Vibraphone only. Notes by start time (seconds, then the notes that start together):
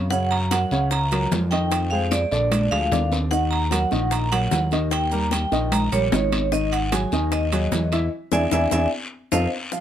0.10 F#5
0.31 A#5
0.51 F#5
0.91 A#5
1.51 G5
1.91 F5
2.11 D5
2.71 F5
3.31 F#5
3.51 A#5
3.71 F#5
4.11 A#5
4.32 F#5
4.92 G5
5.12 A#5
5.31 G5
5.72 A#5
5.92 C#5
6.52 D#5
6.72 F#5
6.92 G#5
7.33 D#5
8.33 D5 E5 G#5
8.53 D5 E5 G#5
8.72 D5 E5 G#5
9.32 C5 D#5 F5